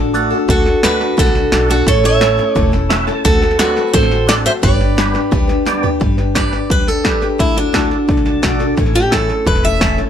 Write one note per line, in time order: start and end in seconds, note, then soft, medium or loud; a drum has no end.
0.00 0.31 A1 medium
0.00 0.14 D4 medium
0.00 0.14 F#4 medium
0.00 0.14 A4 medium
0.14 0.38 A3 medium
0.14 0.31 A3 medium
0.14 0.38 D4 medium
0.14 0.32 D4 medium
0.14 0.38 F#4 medium
0.14 0.31 F#4 medium
0.14 0.38 A4 loud
0.14 0.29 A4 medium
0.14 hi-hat pedal medium
0.30 0.48 D4 medium
0.30 0.48 F#4 medium
0.30 0.48 A4 medium
0.48 0.74 D2 medium
0.48 0.66 D3 medium
0.48 0.66 A3 medium
0.48 0.66 D4 medium
0.48 0.66 F#4 medium
0.48 0.64 A4 medium
0.48 kick loud
0.48 snare soft
0.65 0.83 D4 soft
0.65 0.84 F#4 soft
0.65 0.83 A4 medium
0.65 snare soft
0.83 1.13 D2 medium
0.83 1.00 A3 medium
0.83 1.07 A3 medium
0.83 1.07 D4 medium
0.83 1.01 D4 medium
0.83 1.07 F#4 medium
0.83 1.00 F#4 medium
0.83 0.98 A4 medium
0.83 1.16 B4 medium
0.83 1.07 B4 medium
0.83 snare loud
0.83 hi-hat pedal medium
0.99 1.17 D4 soft
0.99 1.17 F#4 soft
0.99 1.17 A4 medium
0.99 snare soft
1.17 1.47 C2 medium
1.17 1.35 D3 medium
1.17 1.35 A3 medium
1.17 1.35 D4 medium
1.17 1.34 F#4 medium
1.17 1.33 A4 medium
1.17 kick loud
1.17 snare soft
1.26 snare soft
1.34 1.52 D4 soft
1.34 1.52 F#4 medium
1.34 1.52 A4 soft
1.34 snare soft
1.52 1.82 B1 medium
1.52 1.69 A3 medium
1.52 1.76 A3 medium
1.52 1.76 D4 medium
1.52 1.70 D4 medium
1.52 1.76 F#4 medium
1.52 1.69 F#4 medium
1.52 1.77 A4 medium
1.52 1.67 A4 medium
1.52 snare loud
1.52 hi-hat pedal medium
1.68 1.87 D4 medium
1.68 1.87 F#4 medium
1.68 1.86 A4 medium
1.68 snare soft
1.86 2.38 A1 medium
1.86 2.04 A2 medium
1.86 2.04 E3 medium
1.86 2.04 A3 medium
1.86 2.03 C#4 medium
1.86 2.03 E4 medium
1.86 2.01 A4 medium
1.86 2.04 C#5 medium
1.86 kick loud
1.86 snare soft
2.03 2.19 A3 medium
2.03 2.20 C#4 medium
2.03 2.21 E4 medium
2.03 2.21 A4 medium
2.03 2.70 C#5 medium
2.03 2.53 E5 medium
2.03 snare soft
2.20 2.38 A3 medium
2.20 2.45 A3 medium
2.20 2.45 C#4 medium
2.20 2.39 C#4 medium
2.20 2.45 E4 medium
2.20 2.38 E4 medium
2.20 2.45 A4 medium
2.20 2.36 A4 medium
2.20 snare loud
2.20 hi-hat pedal medium
2.38 2.55 A3 soft
2.38 2.55 C#4 medium
2.38 2.56 E4 medium
2.38 2.55 A4 medium
2.38 snare soft
2.53 3.07 E1 medium
2.53 2.73 A2 loud
2.53 2.73 E3 loud
2.53 2.73 A3 loud
2.53 2.73 C#4 loud
2.53 2.72 E4 loud
2.53 2.71 A4 loud
2.53 2.70 D5 medium
2.53 kick loud
2.53 snare soft
2.72 2.88 A3 soft
2.72 2.90 C#4 medium
2.72 2.90 E4 medium
2.72 2.90 A4 medium
2.72 snare soft
2.89 3.13 A3 loud
2.89 3.07 A3 medium
2.89 3.14 C#4 medium
2.89 3.08 C#4 medium
2.89 3.14 E4 medium
2.89 3.07 E4 medium
2.89 3.14 F#4 loud
2.89 3.06 A4 medium
2.89 3.06 E5 medium
2.89 snare loud
2.89 hi-hat pedal medium
3.07 3.24 A3 medium
3.07 3.25 C#4 medium
3.07 3.25 E4 medium
3.07 3.25 A4 medium
3.07 3.23 A5 medium
3.07 snare soft
3.24 3.76 D2 medium
3.24 3.42 D3 medium
3.24 3.42 A3 medium
3.24 3.42 C4 medium
3.24 3.42 F#4 loud
3.24 3.40 A4 medium
3.24 kick loud
3.24 snare soft
3.41 3.59 C4 soft
3.41 3.60 F#4 soft
3.41 3.59 A4 medium
3.41 snare soft
3.51 snare soft
3.58 3.76 A3 medium
3.58 3.82 C4 medium
3.58 3.77 C4 medium
3.58 3.83 D4 medium
3.58 3.83 F#4 medium
3.58 3.77 F#4 medium
3.58 3.83 A4 medium
3.58 3.93 B4 medium
3.58 snare loud
3.58 hi-hat pedal medium
3.62 3.75 A4 medium
3.76 3.93 C4 soft
3.76 3.94 F#4 soft
3.76 3.94 A4 medium
3.76 snare soft
3.93 4.45 A1 medium
3.93 4.11 D3 loud
3.93 4.11 A3 medium
3.93 4.11 C4 medium
3.93 4.11 F#4 medium
3.93 4.09 A4 loud
3.93 4.29 C5 loud
3.93 kick loud
3.93 snare soft
4.03 snare soft
4.10 4.27 C4 soft
4.10 4.28 F#4 medium
4.10 4.28 A4 medium
4.10 snare soft
4.27 4.45 A3 medium
4.27 4.51 C4 medium
4.27 4.46 C4 medium
4.27 4.52 D4 medium
4.27 4.52 F#4 medium
4.27 4.45 F#4 medium
4.27 4.52 A4 medium
4.27 4.43 A4 medium
4.27 4.34 D5 loud
4.27 snare loud
4.27 hi-hat pedal medium
4.44 4.62 C4 medium
4.44 4.63 F#4 medium
4.44 4.62 A4 medium
4.44 4.51 C5 medium
4.44 4.51 E5 loud
4.44 snare soft
4.62 5.14 G1 medium
4.62 4.80 G3 medium
4.62 4.80 D4 medium
4.62 4.79 G4 loud
4.62 4.77 B4 medium
4.62 5.62 D5 medium
4.62 kick loud
4.62 snare soft
4.79 4.96 D4 soft
4.79 4.97 G4 medium
4.79 4.97 B4 medium
4.79 snare soft
4.96 5.14 G3 medium
4.96 5.21 B3 medium
4.96 5.14 D4 medium
4.96 5.21 D4 medium
4.96 5.21 G4 medium
4.96 5.14 G4 medium
4.96 5.22 B4 medium
4.96 5.12 B4 medium
4.96 snare loud
4.96 hi-hat pedal medium
5.14 5.31 D4 soft
5.14 5.32 G4 medium
5.14 5.31 B4 medium
5.14 snare soft
5.31 5.83 D2 medium
5.31 5.49 G3 medium
5.31 5.49 D4 loud
5.31 5.48 G4 loud
5.31 5.46 B4 loud
5.31 kick loud
5.31 snare soft
5.47 5.65 D4 medium
5.47 5.66 G4 medium
5.47 5.66 B4 medium
5.47 snare soft
5.65 5.83 G3 medium
5.65 5.90 B3 loud
5.65 5.84 D4 medium
5.65 5.90 D4 medium
5.65 5.91 G4 medium
5.65 5.83 G4 medium
5.65 5.82 B4 medium
5.65 5.91 D5 medium
5.65 snare medium
5.65 hi-hat pedal loud
5.83 5.99 D4 medium
5.83 6.00 G4 medium
5.83 6.01 B4 medium
5.83 floor tom medium
6.00 6.52 G1 medium
6.00 6.18 G3 medium
6.00 6.18 D4 medium
6.00 6.17 G4 medium
6.00 6.16 B4 medium
6.00 kick loud
6.00 snare soft
6.17 6.34 D4 soft
6.17 6.35 G4 soft
6.17 6.35 B4 medium
6.17 snare soft
6.35 6.52 G3 medium
6.35 6.59 D4 medium
6.35 6.53 D4 medium
6.35 6.59 G4 medium
6.35 6.53 G4 medium
6.35 6.60 B4 medium
6.35 6.51 B4 medium
6.35 6.69 D5 medium
6.35 kick medium
6.35 snare medium
6.35 hi-hat pedal medium
6.53 6.70 D4 soft
6.53 6.70 G4 soft
6.53 6.70 B4 medium
6.53 snare soft
6.70 7.21 D2 medium
6.70 6.87 G3 medium
6.70 6.88 D4 medium
6.70 6.87 G4 medium
6.70 6.86 B4 medium
6.70 kick loud
6.70 snare soft
6.87 7.04 D4 soft
6.87 7.05 G4 soft
6.87 7.23 A4 medium
6.87 7.04 B4 soft
6.87 snare soft
7.04 7.22 G3 medium
7.04 7.28 D4 medium
7.04 7.22 D4 medium
7.04 7.28 G4 medium
7.04 7.22 G4 medium
7.04 7.29 B4 medium
7.04 7.20 B4 medium
7.04 kick medium
7.04 snare loud
7.04 hi-hat pedal medium
7.21 7.38 D4 soft
7.21 7.39 G4 medium
7.21 7.39 B4 medium
7.21 snare soft
7.38 7.91 D2 medium
7.38 7.56 D3 medium
7.38 7.57 A3 medium
7.38 7.57 D4 medium
7.38 7.56 E4 medium
7.38 7.56 F#4 medium
7.38 7.54 A4 medium
7.38 kick loud
7.38 snare soft
7.55 7.73 D4 soft
7.55 7.73 F#4 soft
7.55 7.73 A4 medium
7.55 snare soft
7.73 7.91 D3 medium
7.73 7.91 A3 medium
7.73 7.97 D4 medium
7.73 7.91 D4 medium
7.73 7.98 F#4 medium
7.73 7.90 F#4 medium
7.73 7.98 A4 medium
7.73 7.89 A4 medium
7.73 kick medium
7.73 snare loud
7.73 hi-hat pedal medium
7.90 8.08 D4 soft
7.90 8.09 F#4 soft
7.90 8.08 A4 soft
7.90 snare soft
8.08 8.38 C2 medium
8.08 8.25 A3 medium
8.08 8.26 D4 medium
8.08 8.25 F#4 medium
8.08 8.24 A4 medium
8.08 kick loud
8.08 snare soft
8.17 snare soft
8.25 8.42 D4 soft
8.25 8.43 F#4 medium
8.25 8.43 A4 medium
8.25 8.42 A5 medium
8.25 snare soft
8.42 8.72 B1 medium
8.42 8.60 D3 medium
8.42 8.60 A3 medium
8.42 8.66 D4 medium
8.42 8.61 D4 medium
8.42 8.67 F#4 medium
8.42 8.60 F#4 loud
8.42 8.67 A4 medium
8.42 8.58 A4 medium
8.42 8.75 D5 medium
8.42 kick medium
8.42 snare loud
8.42 hi-hat pedal medium
8.59 8.78 D4 medium
8.59 8.78 F#4 medium
8.59 8.77 A4 medium
8.59 snare soft
8.77 9.29 A1 medium
8.77 8.94 A2 medium
8.77 8.95 E3 medium
8.77 8.95 A3 medium
8.77 8.94 C#4 medium
8.77 8.94 E4 loud
8.77 8.92 A4 loud
8.77 kick loud
8.77 snare soft
8.86 snare soft
8.93 9.11 A3 soft
8.93 9.12 C#4 soft
8.93 9.12 E4 soft
8.93 9.12 G4 medium
8.93 9.11 A4 medium
8.93 snare soft
9.11 9.29 A2 medium
9.11 9.29 E3 medium
9.11 9.30 A3 medium
9.11 9.35 C#4 medium
9.11 9.29 C#4 medium
9.11 9.36 E4 medium
9.11 9.29 E4 medium
9.11 9.36 A4 medium
9.11 9.27 A4 medium
9.11 kick medium
9.11 snare loud
9.11 hi-hat pedal medium
9.29 9.44 A3 soft
9.29 9.45 C#4 soft
9.29 9.46 E4 medium
9.29 9.46 A4 medium
9.29 snare soft
9.45 9.98 E1 medium
9.45 9.63 A3 medium
9.45 9.64 C#4 medium
9.45 9.63 E4 medium
9.45 9.62 A4 medium
9.45 9.64 B4 medium
9.45 kick loud
9.45 snare soft
9.55 snare soft
9.63 9.80 A3 soft
9.63 9.80 C#4 soft
9.63 9.81 E4 soft
9.63 9.81 A4 medium
9.63 9.98 E5 loud
9.63 snare soft
9.80 9.98 A2 medium
9.80 9.98 E3 medium
9.80 9.99 A3 medium
9.80 10.04 C#4 medium
9.80 9.98 C#4 medium
9.80 10.05 E4 medium
9.80 9.97 E4 medium
9.80 10.05 A4 medium
9.80 9.96 A4 medium
9.80 kick medium
9.80 snare loud
9.80 hi-hat pedal medium
9.97 10.10 A3 soft
9.97 10.10 C#4 medium
9.97 10.10 E4 medium
9.97 10.10 A4 medium
9.97 snare soft